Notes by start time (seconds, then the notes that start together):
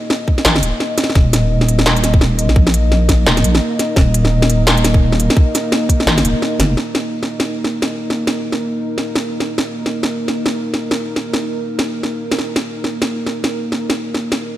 Already playing: A#3 D#4 A#4 D#5
0.10 snare
0.28 kick
0.38 snare
0.45 G#1, snare
0.56 snare
0.63 D#1, closed hi-hat
0.80 snare
0.98 snare, closed hi-hat
1.04 snare
1.10 snare
1.15 D#1, kick, snare
1.33 snare, closed hi-hat
1.61 snare
1.69 closed hi-hat
1.79 snare
1.86 snare
1.97 closed hi-hat
2.04 snare, closed hi-hat
2.14 kick
2.21 snare
2.39 closed hi-hat
2.49 A#1, snare
2.56 kick
2.67 snare
2.74 closed hi-hat
2.92 snare
3.09 kick, snare, closed hi-hat
3.26 D#1, snare
3.37 snare, closed hi-hat
3.44 A#1, closed hi-hat
3.55 snare
3.79 snare, closed hi-hat
3.96 D#1, kick, snare
4.14 closed hi-hat
4.25 snare
4.42 snare
4.50 closed hi-hat
4.67 snare
4.77 closed hi-hat
4.84 snare, closed hi-hat
4.94 kick
5.12 snare
5.20 closed hi-hat
5.30 snare
5.37 kick
5.55 snare, closed hi-hat
5.72 snare
5.89 kick, closed hi-hat
6.00 snare
6.06 G#1, snare
6.18 snare, closed hi-hat
6.24 D#1, closed hi-hat
6.42 snare
6.59 F#1, snare, closed hi-hat
6.77 snare
6.95 snare
7.23 snare
7.40 snare
7.64 snare
7.82 snare
8.10 snare
8.27 snare
8.52 snare
8.98 snare
9.15 snare
9.40 snare
9.58 snare
9.86 snare
10.03 snare
10.28 snare
10.46 snare
10.74 snare
10.91 snare
11.16 snare
11.34 snare
11.79 snare
12.03 snare
12.32 snare
12.39 snare
12.56 snare
12.84 snare
13.02 snare
13.26 snare
13.44 snare
13.72 snare
13.90 snare
14.14 snare
14.32 snare